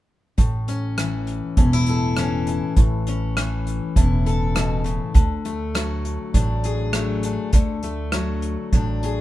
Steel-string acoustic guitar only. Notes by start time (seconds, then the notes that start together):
0.38 A2
0.68 C#4
0.98 E3
1.57 A2 C#4
1.73 E4
1.89 A4
2.19 E3 C#4
2.49 E4
2.77 A2
3.08 C#4
3.37 E3
3.96 A2 E4
4.26 A4
4.55 B2
4.84 C#3
5.14 D3
5.45 A3
5.75 F#3
6.34 A2 D4
6.65 G#4
6.95 F#3 A3
7.25 D4
7.54 D3
7.84 A3
8.14 F#3
8.74 A2 D4
9.04 G#4